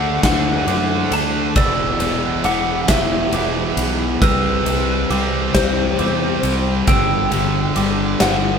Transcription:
0.00 0.18 D2 loud
0.00 0.23 D3 medium
0.00 1.54 F#3 medium
0.00 0.23 A3 medium
0.00 0.24 D4 medium
0.00 1.54 D4 medium
0.00 1.54 C5 medium
0.00 0.23 F#5 loud
0.00 0.66 D6 medium
0.23 0.62 D2 loud
0.23 0.67 D3 loud
0.23 0.68 A3 loud
0.23 0.68 D4 loud
0.23 1.15 F#5 loud
0.23 kick medium
0.23 snare loud
0.23 ride loud
0.67 1.06 F#2 medium
0.67 1.53 D3 medium
0.67 1.54 A3 medium
0.67 1.54 D4 loud
0.67 1.56 D6 medium
0.67 ride medium
1.11 1.50 D2 medium
1.11 1.54 A5 loud
1.11 ride medium
1.56 1.95 E1 loud
1.56 1.99 E2 loud
1.56 2.00 B2 loud
1.56 2.01 E3 loud
1.56 4.19 G3 medium
1.56 4.19 E4 medium
1.56 4.19 D5 medium
1.56 2.48 D5 loud
1.56 2.45 E6 loud
1.56 kick loud
1.56 ride loud
2.00 2.39 E1 medium
2.00 2.43 E2 medium
2.00 2.44 B2 medium
2.00 2.46 E3 loud
2.00 ride medium
2.44 2.83 E1 loud
2.44 2.87 E2 medium
2.44 2.88 B2 medium
2.44 2.89 E3 medium
2.44 2.86 F#5 loud
2.44 3.32 D6 medium
2.44 ride medium
2.88 3.27 E1 loud
2.88 3.32 E2 loud
2.88 3.33 B2 loud
2.88 3.34 E3 loud
2.88 3.85 E5 loud
2.88 kick medium
2.88 snare loud
2.88 ride loud
3.32 3.71 E1 medium
3.32 4.19 E2 medium
3.32 4.19 B2 medium
3.32 4.20 E3 medium
3.32 4.22 D6 medium
3.32 ride medium
3.77 4.16 B1 medium
3.77 ride loud
4.21 4.60 C2 loud
4.21 4.65 C3 loud
4.21 6.85 E3 medium
4.21 4.67 G3 loud
4.21 6.85 C4 medium
4.21 4.67 C4 loud
4.21 8.59 G4 medium
4.21 5.54 B4 loud
4.21 5.10 E6 loud
4.21 kick loud
4.21 ride loud
4.65 5.04 C2 loud
4.65 5.09 C3 medium
4.65 5.11 G3 medium
4.65 5.11 C4 loud
4.65 ride medium
5.10 5.49 C2 loud
5.10 5.53 C3 medium
5.10 5.55 G3 medium
5.10 5.55 C4 medium
5.10 5.98 D6 medium
5.10 ride medium
5.54 5.93 C2 medium
5.54 5.98 C3 loud
5.54 5.99 G3 loud
5.54 6.00 C4 loud
5.54 6.83 C5 medium
5.54 kick medium
5.54 snare loud
5.54 ride loud
5.99 6.38 E2 medium
5.99 6.85 C3 medium
5.99 6.86 G3 loud
5.99 6.86 C4 medium
5.99 6.88 D6 medium
5.99 ride medium
6.43 6.82 C2 medium
6.43 ride medium
6.87 7.26 G1 loud
6.87 7.31 G2 medium
6.87 7.31 D3 loud
6.87 8.59 G3 medium
6.87 7.32 G3 loud
6.87 8.59 D4 medium
6.87 8.21 G5 loud
6.87 7.76 E6 loud
6.87 kick loud
6.87 ride loud
7.32 7.71 G1 loud
7.32 7.75 G2 medium
7.32 7.76 D3 loud
7.32 7.77 G3 medium
7.32 ride medium
7.76 8.15 G1 loud
7.76 8.19 G2 medium
7.76 8.20 D3 medium
7.76 8.20 G3 medium
7.76 8.59 D6 medium
7.76 ride medium
8.20 8.59 G1 loud
8.20 8.59 G2 medium
8.20 8.59 D3 loud
8.20 8.59 G3 loud
8.20 8.59 F#5 loud
8.20 snare loud
8.20 ride loud

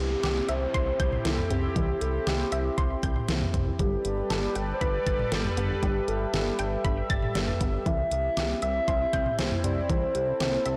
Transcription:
0.00 0.16 C2 medium
0.00 3.75 C4 medium
0.00 3.75 E4 medium
0.00 0.50 G4 loud
0.00 3.75 G4 medium
0.00 downlifter medium
0.23 0.41 C2 medium
0.23 0.36 G4 medium
0.23 snare loud
0.23 closed hi-hat medium
0.49 0.67 C2 medium
0.49 0.74 C5 loud
0.49 0.62 E5 medium
0.49 closed hi-hat medium
0.74 0.92 C2 loud
0.74 1.27 C5 loud
0.74 0.87 C6 medium
0.74 kick loud
0.74 closed hi-hat medium
1.00 1.18 C2 loud
1.00 1.13 G6 medium
1.00 kick loud
1.00 closed hi-hat medium
1.12 mid tom medium
1.25 1.43 C2 loud
1.25 1.38 E3 medium
1.25 1.52 A4 loud
1.25 snare loud
1.25 closed hi-hat medium
1.38 mid tom medium
1.50 1.68 C2 medium
1.50 1.63 C4 medium
1.50 1.75 G4 medium
1.50 closed hi-hat medium
1.50 mid tom loud
1.76 1.94 C2 loud
1.76 1.89 E3 medium
1.76 2.00 G4 loud
1.76 kick loud
1.76 closed hi-hat medium
2.01 2.19 C2 loud
2.01 2.28 A4 medium
2.01 closed hi-hat medium
2.27 2.45 C2 loud
2.27 3.03 G4 medium
2.27 2.40 G4 medium
2.27 snare loud
2.27 closed hi-hat medium
2.52 2.70 C2 loud
2.52 2.65 E5 medium
2.52 closed hi-hat medium
2.78 2.96 C2 loud
2.78 2.91 C6 medium
2.78 kick loud
2.78 closed hi-hat medium
3.03 3.21 C2 medium
3.03 3.16 G6 medium
3.03 kick medium
3.03 closed hi-hat medium
3.16 mid tom medium
3.28 3.46 C2 loud
3.28 3.41 E3 medium
3.28 snare loud
3.28 closed hi-hat medium
3.41 mid tom medium
3.54 3.72 C2 loud
3.54 3.67 C4 medium
3.54 kick medium
3.54 closed hi-hat medium
3.54 mid tom loud
3.79 3.97 G1 loud
3.79 7.82 G3 medium
3.79 3.92 G3 medium
3.79 4.57 G4 loud
3.79 9.86 G4 medium
3.79 7.82 A4 medium
3.79 7.82 B4 medium
3.79 5.81 D5 medium
3.79 kick loud
3.79 closed hi-hat medium
4.05 4.23 G1 medium
4.05 closed hi-hat medium
4.30 4.48 G1 loud
4.30 4.43 A4 medium
4.30 snare loud
4.30 closed hi-hat medium
4.55 4.73 G1 medium
4.55 4.74 B4 loud
4.55 4.68 G5 medium
4.55 closed hi-hat medium
4.74 4.83 C5 medium
4.81 4.99 G1 loud
4.81 5.31 B4 loud
4.81 4.94 B5 medium
4.81 kick loud
4.81 closed hi-hat medium
5.06 5.24 G1 medium
5.06 5.19 A6 medium
5.06 kick loud
5.06 closed hi-hat medium
5.19 mid tom medium
5.32 5.50 G1 loud
5.32 5.45 G3 medium
5.32 5.43 A4 loud
5.32 snare loud
5.32 closed hi-hat medium
5.45 mid tom medium
5.57 5.75 G1 loud
5.57 5.70 B3 medium
5.57 5.81 G4 medium
5.57 closed hi-hat medium
5.57 mid tom loud
5.83 6.01 G1 loud
5.83 5.96 G3 medium
5.83 6.10 G4 loud
5.83 7.84 E5 medium
5.83 kick loud
5.83 closed hi-hat medium
6.08 6.26 G1 loud
6.08 6.33 A4 medium
6.08 closed hi-hat medium
6.34 6.51 G1 loud
6.34 7.06 G4 medium
6.34 6.46 A4 medium
6.34 snare loud
6.34 closed hi-hat medium
6.59 6.77 G1 medium
6.59 6.72 G5 medium
6.59 closed hi-hat medium
6.84 7.02 G1 loud
6.84 6.97 B5 medium
6.84 kick loud
6.84 closed hi-hat medium
7.10 7.28 G1 loud
7.10 7.23 A6 medium
7.10 kick loud
7.10 closed hi-hat medium
7.23 mid tom medium
7.35 7.53 G1 loud
7.35 7.48 G3 medium
7.35 snare loud
7.35 closed hi-hat medium
7.48 mid tom medium
7.61 7.79 G1 loud
7.61 7.74 B3 medium
7.61 kick medium
7.61 closed hi-hat medium
7.86 8.04 C2 loud
7.86 7.99 E3 medium
7.86 10.77 C4 medium
7.86 10.77 E4 medium
7.86 8.58 E5 loud
7.86 kick loud
7.86 closed hi-hat medium
8.11 8.29 C2 medium
8.11 closed hi-hat medium
8.37 8.55 C2 medium
8.37 8.50 G4 medium
8.37 snare loud
8.37 closed hi-hat medium
8.62 8.80 C2 medium
8.62 9.35 E5 loud
8.62 8.75 E5 medium
8.62 closed hi-hat medium
8.88 9.06 C2 loud
8.88 9.01 C6 medium
8.88 kick loud
8.88 closed hi-hat medium
9.13 9.31 C2 medium
9.13 9.26 G6 medium
9.13 kick medium
9.13 closed hi-hat medium
9.26 mid tom medium
9.39 9.56 C2 loud
9.39 9.51 E3 medium
9.39 9.66 C5 medium
9.39 snare loud
9.39 closed hi-hat medium
9.52 mid tom medium
9.64 9.82 C2 loud
9.64 9.77 C4 medium
9.64 9.91 D5 medium
9.64 closed hi-hat medium
9.64 mid tom loud
9.90 10.07 C2 loud
9.90 10.02 E3 medium
9.90 10.77 A4 medium
9.90 10.40 C5 loud
9.90 kick loud
9.90 closed hi-hat medium
10.15 10.33 C2 loud
10.15 closed hi-hat medium
10.40 10.58 C2 loud
10.40 10.53 G4 medium
10.40 10.77 C5 medium
10.40 snare loud
10.40 closed hi-hat medium
10.66 10.77 C2 medium
10.66 10.77 E5 medium
10.66 closed hi-hat medium

